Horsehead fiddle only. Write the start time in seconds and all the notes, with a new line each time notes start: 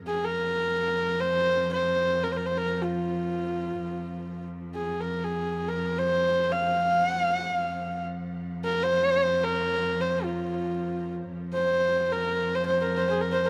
0.07 G#4
0.24 A#4
1.21 C5
1.73 C5
2.23 A#4
2.32 C5
2.37 A#4
2.46 C5
2.57 A#4
2.82 F4
4.75 G#4
5.00 A#4
5.24 G#4
5.68 A#4
5.98 C5
6.52 F5
7.06 F#5
7.21 F5
7.37 F#5
7.51 F5
8.65 A#4
8.83 C5
9.44 A#4
10.01 C5
10.24 F4
11.54 C5
12.12 A#4
12.55 C5
12.66 C5
12.81 A#4 C5
12.96 C5
13.10 G#4
13.21 A#4
13.32 C5
13.45 A#4